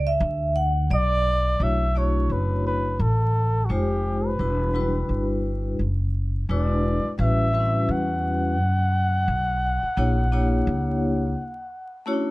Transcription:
0.00 0.17 C#2 medium
0.07 0.53 E5 loud
0.20 0.87 D2 loud
0.56 0.92 F#5 loud
0.90 1.57 B1 medium
0.90 1.24 D5 loud
0.94 1.65 D5 loud
1.60 2.27 B1 medium
1.60 1.87 A3 medium
1.60 1.87 D4 medium
1.60 1.87 E4 medium
1.60 1.87 F#4 medium
1.60 1.88 C#5 medium
1.60 1.99 E5 loud
1.95 2.95 A3 medium
1.95 2.95 D4 medium
1.95 2.95 E4 medium
1.95 2.95 F#4 medium
1.95 2.96 C#5 medium
1.95 2.34 C#5 medium
2.30 2.96 F#1 medium
2.30 2.66 B4 medium
2.67 3.02 B4 medium
2.99 3.66 A1 medium
2.99 3.67 A4 medium
3.65 4.28 G#3 medium
3.65 3.73 F#4 medium
3.70 4.36 F1 medium
3.70 4.28 D#4 medium
3.70 4.28 F4 medium
3.70 4.29 G4 medium
3.70 4.28 G4 medium
3.70 4.29 C5 medium
4.27 5.31 B4 medium
4.39 5.06 E1 medium
4.39 4.66 G3 medium
4.39 4.66 D4 medium
4.39 4.66 E4 medium
4.39 4.66 F#4 medium
4.39 4.67 B4 medium
4.74 4.82 F#3 medium
4.74 5.74 D4 medium
4.74 5.74 E4 medium
4.74 5.74 F#4 medium
4.74 5.75 B4 medium
4.80 5.77 G3 medium
5.09 5.75 G1 medium
5.79 6.46 F#1 medium
6.49 7.02 E1 medium
6.49 7.08 G#3 medium
6.49 7.08 D4 medium
6.49 7.08 E4 medium
6.49 7.08 F#4 medium
6.49 7.08 B4 medium
6.49 7.16 D5 medium
7.04 muted upright bass stroke soft
7.18 7.85 A1 loud
7.18 7.45 G3 medium
7.18 7.45 C#4 medium
7.18 7.45 E4 medium
7.18 7.46 F#4 medium
7.18 7.46 B4 medium
7.18 7.93 E5 loud
7.53 8.53 G3 medium
7.53 7.61 C4 medium
7.53 8.53 E4 medium
7.53 8.54 F#4 medium
7.53 8.54 B4 medium
7.60 8.56 C#4 medium
7.88 8.58 E2 medium
7.88 12.09 F#5 medium
8.58 9.24 F#2 medium
9.28 9.81 B1 medium
9.83 muted upright bass stroke soft
9.97 10.64 A#1 medium
9.97 10.24 A#3 medium
9.97 10.24 D4 medium
9.97 10.24 E4 medium
9.97 10.24 G4 medium
9.97 10.25 C#5 medium
10.32 11.32 A#3 medium
10.32 11.32 D4 medium
10.32 11.32 E4 medium
10.32 11.32 G4 medium
10.32 11.33 C#5 loud
10.67 11.34 C#2 medium
12.06 12.31 A3 medium
12.06 12.15 C#4 medium
12.06 12.31 E4 medium
12.06 12.31 F#4 medium
12.06 12.31 C#5 loud
12.13 12.31 D4 medium

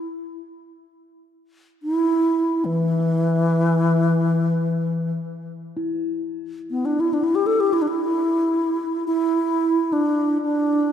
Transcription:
1.83 2.66 E4 medium
2.65 5.12 E3 medium
5.77 10.92 E4 soft
6.70 6.87 B3 medium
6.85 7.02 D4 medium
7.00 7.15 E4 medium
7.13 7.25 D4 medium
7.24 7.37 E4 medium
7.35 7.48 G4 medium
7.46 7.62 A4 medium
7.60 7.75 G4 medium
7.73 7.83 E4 medium
7.82 7.89 D4 medium
7.88 9.06 E4 medium
9.07 9.94 E4 medium
9.93 10.42 D4 medium
10.42 10.92 D4 medium

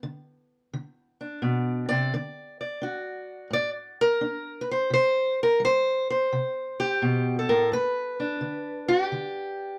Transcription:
0.03 0.67 D3 medium
0.73 1.38 D3 medium
1.21 2.09 D4 soft
1.42 1.89 B2 medium
1.89 2.12 C3 medium
1.89 2.13 D5 medium
2.14 2.78 D3 medium
2.14 2.59 D5 soft
2.61 3.52 D5 soft
2.82 3.47 D4 medium
2.82 4.00 F#4 soft
3.50 4.16 A2 medium
3.50 3.69 D5 loud
4.01 4.61 A#4 medium
4.21 4.87 D4 medium
4.61 4.70 B4 medium
4.71 4.92 C5 medium
4.90 5.56 C3 medium
4.90 5.40 C5 loud
5.43 5.64 A#4 medium
5.60 6.26 G3 medium
5.65 6.09 C5 loud
6.10 7.49 C5 medium
6.33 6.98 C3 medium
6.80 7.38 G4 medium
7.02 7.49 B2 medium
7.39 7.72 A4 medium
7.49 7.72 A2 medium
7.49 7.72 A#4 medium
7.72 8.38 G2 medium
7.72 8.88 B4 medium
8.20 9.79 D4 soft
8.41 9.07 D3 medium
8.88 9.79 G4 medium
9.12 9.78 D3 medium

